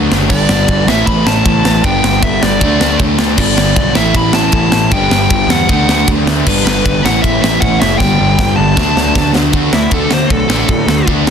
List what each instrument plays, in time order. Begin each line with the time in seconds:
Already playing: distorted electric guitar D3 A3 D4
0.10 picked electric bass F#1, overdriven electric guitar D3 F#3 A3 D4, snare
0.29 picked electric bass G1, overdriven electric guitar G2 D3 G3 B3 D4, lead electric guitar D5, kick, crash
0.49 picked electric bass G1, snare
0.68 picked electric bass G1, kick, ride
0.86 picked electric bass A1, overdriven electric guitar A2 E3 A3 C#4 E4, lead electric guitar E5, snare
1.06 picked electric bass A1, lead electric guitar B5, kick, ride
1.26 picked electric bass A1, lead electric guitar A5, snare
1.45 picked electric bass A1, overdriven electric guitar A2 E3 A3 C#4 E4, kick, ride
1.64 picked electric bass A1, snare
1.84 picked electric bass G1, overdriven electric guitar G2 D3 G3 B3 D4, lead electric guitar G5, kick, ride
2.03 picked electric bass G1, snare
2.22 picked electric bass G1, lead electric guitar E5, kick, ride
2.41 picked electric bass G1, overdriven electric guitar G2 D3 G3 B3 D4, lead electric guitar D5, snare
2.61 picked electric bass D2, overdriven electric guitar D3 F#3 A3 D4, kick, ride
2.80 picked electric bass D2, snare
3.00 picked electric bass D2, kick, ride
3.18 picked electric bass D2, overdriven electric guitar D3 F#3 A3 D4, snare
3.38 picked electric bass G1, overdriven electric guitar G2 D3 G3 B3 D4, lead electric guitar D5, kick, crash
3.56 picked electric bass G1, snare
3.76 picked electric bass B1, kick, ride
3.95 picked electric bass A1, overdriven electric guitar A2 E3 A3 C#4 E4, lead electric guitar E5, snare
4.14 picked electric bass A1, lead electric guitar B5, kick, ride
4.33 picked electric bass A1, lead electric guitar A5, snare
4.52 picked electric bass A1, overdriven electric guitar A2 E3 A3 C#4 E4, kick, ride
4.71 picked electric bass A1, snare
4.90 picked electric bass G1, overdriven electric guitar G2 D3 G3 B3 D4, lead electric guitar G5, kick, ride
5.11 picked electric bass G1, snare
5.29 picked electric bass G1, lead electric guitar G5, kick, ride
5.48 picked electric bass E2, overdriven electric guitar G2 D3 G3 B3 D4, lead electric guitar F#5, snare
5.69 picked electric bass D2, overdriven electric guitar D3 F#3 A3 D4, kick, ride
5.87 picked electric bass D2, snare
6.08 picked electric bass D2, kick, ride
6.25 picked electric bass D2, overdriven electric guitar A3 D4, snare
6.29 overdriven electric guitar D3 F#3
6.46 picked electric bass G1, overdriven electric guitar G2 D3 G3 B3 D4, lead electric guitar B4, kick, crash
6.65 picked electric bass G1, snare
6.85 picked electric bass G1, kick, ride
7.04 picked electric bass A1, overdriven electric guitar A2 E3 A3 C#4 E4, lead electric guitar F#5, snare
7.22 picked electric bass A1, lead electric guitar E5, kick, ride
7.42 picked electric bass A1, lead electric guitar E5, snare
7.61 picked electric bass A1, overdriven electric guitar A2 E3 A3 C#4 E4, lead electric guitar F#5, kick, ride
7.80 picked electric bass F#1, lead electric guitar E5, snare
7.98 picked electric bass G1, overdriven electric guitar G2 D3 G3 B3 D4, lead electric guitar G5, kick, snare
8.20 picked electric bass G1
8.39 picked electric bass G1, kick, snare
8.56 picked electric bass G1, overdriven electric guitar G2 D3 G3 B3 D4, lead electric guitar A5
8.76 picked electric bass D2, overdriven electric guitar D3 F#3 A3 D4, kick, snare
8.96 picked electric bass D2, snare
9.15 picked electric bass D2, kick, snare
9.34 picked electric bass D2, overdriven electric guitar D3 F#3 A3 D4, snare
9.53 picked electric bass D2, overdriven electric guitar D3 A3 D4, kick, ride
9.57 overdriven electric guitar F#4
9.73 picked electric bass D2, distorted electric guitar D3 A3, lead electric guitar E4, snare
9.91 picked electric bass D2, distorted electric guitar D3 A3 D4, lead electric guitar A4, kick, ride
10.10 picked electric bass D2, overdriven electric guitar D3 A3 D4 F#4, lead electric guitar C5, snare
10.30 picked electric bass B1, distorted electric guitar D3 A3, lead electric guitar A4, kick, ride
10.48 picked electric bass A1, distorted electric guitar D3 A3 D4, snare
10.68 picked electric bass A2, distorted electric guitar D3 A3, kick, ride
10.86 picked electric bass D2, distorted electric guitar D3 A3, snare
11.07 picked electric bass D2, overdriven electric guitar D3 A3 D4 F#4, kick, ride
11.27 distorted electric guitar D3, overdriven electric guitar A3